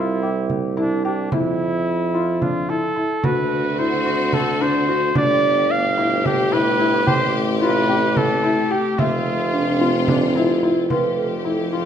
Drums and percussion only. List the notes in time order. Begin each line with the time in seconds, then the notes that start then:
0.23 frame drum
0.50 frame drum
1.32 frame drum
1.60 frame drum
2.42 frame drum
3.24 frame drum
3.51 frame drum
4.06 frame drum
4.33 frame drum
5.15 frame drum
5.43 frame drum
5.98 frame drum
6.25 frame drum
7.07 frame drum
7.35 frame drum
7.89 frame drum
8.17 frame drum
8.99 frame drum
9.81 frame drum
10.08 frame drum
10.35 frame drum
10.63 frame drum
10.90 frame drum